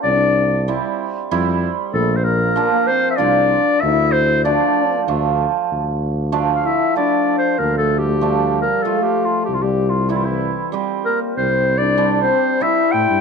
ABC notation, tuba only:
X:1
M:3/4
L:1/16
Q:1/4=95
K:Dm
V:1 name="Tuba" clef=bass
C,,8 F,,4 | B,,,8 C,,4 | D,,8 D,,4 | D,,12 |
D,,12 | C,,12 | C,,8- C,,2 A,, G,, |]